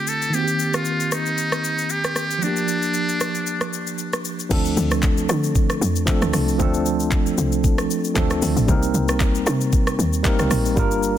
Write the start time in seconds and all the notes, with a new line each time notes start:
Already playing: D3 A3 C4 F4
0.07 A4, shaker
0.22 shaker
0.30 D#3 A#3, shaker
0.34 C4 F#4 G4
0.44 G4, shaker
0.60 shaker
0.74 F4, cross-stick, shaker
0.85 shaker
1.00 shaker
1.12 D#4, cross-stick, shaker
1.26 shaker
1.38 shaker
1.52 cross-stick, shaker
1.64 shaker
1.78 shaker
1.90 G4, shaker
2.04 cross-stick, shaker
2.16 cross-stick, shaker
2.31 shaker
2.38 F3 A3, shaker
2.43 D4 G4
2.47 A#3
2.57 shaker
2.68 shaker
2.82 shaker
2.94 shaker
3.09 shaker
3.21 cross-stick, shaker
3.35 shaker
3.47 shaker
3.61 cross-stick, shaker
3.73 shaker
3.87 shaker
3.98 shaker
4.13 cross-stick, shaker
4.25 shaker
4.39 shaker
4.49 D2 F3 A3 C4 D4 A4, kick, crash, shaker
4.65 shaker
4.77 D2, shaker
4.91 cross-stick, shaker
5.03 kick, clap, shaker
5.18 shaker
5.29 D3, cross-stick, shaker
5.43 shaker
5.55 kick, shaker
5.70 cross-stick, shaker
5.81 F2, shaker
5.96 shaker
6.06 F3 A3 C4 D4 A4, kick, clap, shaker
6.22 D2, cross-stick, shaker
6.33 C2, cross-stick, open hi-hat, shaker
6.48 shaker
6.58 D2 F3 A3 C4 D4 A4, kick, shaker
6.74 shaker
6.86 shaker
7.00 shaker
7.11 kick, clap, shaker
7.26 shaker
7.38 C2, shaker
7.52 shaker
7.64 kick, shaker
7.78 cross-stick, shaker
7.91 shaker
8.04 shaker
8.14 D2 F3 A3 C4 D4, kick, clap, shaker
8.18 A4
8.30 cross-stick, shaker
8.42 D2, open hi-hat, shaker
8.56 A1, shaker
8.67 C2 G3 A#3 C4 D#4 A#4, kick, shaker
8.83 shaker
8.94 C2, shaker
9.08 cross-stick, shaker
9.20 kick, clap, shaker
9.35 shaker
9.47 C3, cross-stick, shaker
9.61 shaker
9.73 kick, shaker
9.87 cross-stick, shaker
9.99 D#2, shaker
10.13 shaker
10.23 G3 A#3 C4 D#4 A#4, kick, clap, shaker
10.39 C2, cross-stick, shaker
10.51 A#1, cross-stick, open hi-hat, shaker
10.66 shaker
10.75 G1 G3 A#3 D4 F4 A#4, kick, shaker
10.91 shaker
11.03 shaker